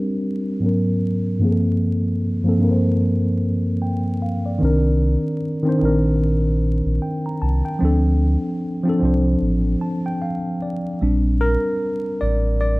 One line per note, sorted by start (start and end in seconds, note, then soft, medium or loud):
0.00 0.63 G3 medium
0.00 0.63 C4 medium
0.00 0.63 D4 medium
0.00 0.63 G4 medium
0.00 0.63 A#4 medium
0.60 1.27 G#2 medium
0.60 1.28 F#3 medium
0.60 1.29 B3 medium
0.64 1.30 C#4 medium
0.64 1.30 A#4 medium
1.39 2.18 G2 medium
1.39 2.19 F3 medium
1.39 2.19 A#3 medium
1.43 2.20 C4 medium
1.43 1.51 G#4 medium
1.52 2.24 A4 medium
2.43 2.56 G2 medium
2.43 2.57 F3 medium
2.43 2.58 A#3 medium
2.47 2.58 C4 medium
2.47 2.59 A4 medium
2.58 3.84 G2 medium
2.58 3.85 F3 medium
2.58 3.86 A#3 medium
2.63 3.87 C4 medium
2.63 2.70 A#4 medium
2.71 3.91 C5 medium
3.82 4.19 G5 medium
4.22 4.44 F5 medium
4.46 4.83 D5 medium
4.59 5.17 C2 loud
4.59 5.38 D#3 medium
4.59 5.39 C4 medium
4.63 5.40 D4 medium
4.63 5.41 A#4 medium
5.63 5.76 D#3 medium
5.63 5.77 C4 medium
5.67 5.78 D4 medium
5.67 5.79 C5 medium
5.79 6.81 A#1 medium
5.79 7.05 D#3 medium
5.79 7.06 C4 medium
5.79 7.07 D4 medium
5.85 7.08 A#4 medium
6.85 6.99 A#1 medium
7.02 7.24 G5 soft
7.26 7.41 A#5 medium
7.42 7.62 C2 medium
7.42 7.64 A5 medium
7.65 8.03 G5 medium
7.79 8.37 D2 loud
7.79 8.58 F3 medium
7.79 8.59 C4 medium
7.79 8.60 D4 medium
7.85 8.61 A4 medium
8.83 8.96 F3 medium
8.83 8.97 C4 medium
8.87 8.98 D4 medium
8.87 8.99 A4 medium
8.99 9.36 C2 medium
8.99 10.25 F3 medium
8.99 10.26 C4 medium
9.03 10.27 D4 medium
9.03 10.28 C5 medium
9.41 9.76 A1 loud
9.81 10.03 A5 medium
10.06 10.20 G5 medium
10.22 10.58 F5 medium
10.62 10.99 D5 medium
11.01 11.57 A#1 loud
11.01 12.80 G3 medium
11.01 12.80 C4 medium
11.01 12.80 D4 medium
11.41 12.23 A#4 loud
12.21 12.80 A1 medium
12.21 12.59 D5 medium
12.61 12.76 D5 medium